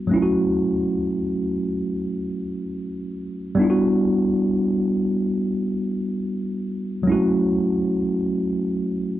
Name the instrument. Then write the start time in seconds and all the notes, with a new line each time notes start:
tine electric piano
0.07 F#3 A3
0.11 C#4 E4
0.16 F4
0.22 F#4
3.55 G3 B3
3.59 D4 E4
3.64 F4
3.70 F#4
7.03 F#3 G#3
7.07 C#4 E4
7.12 A3 F#4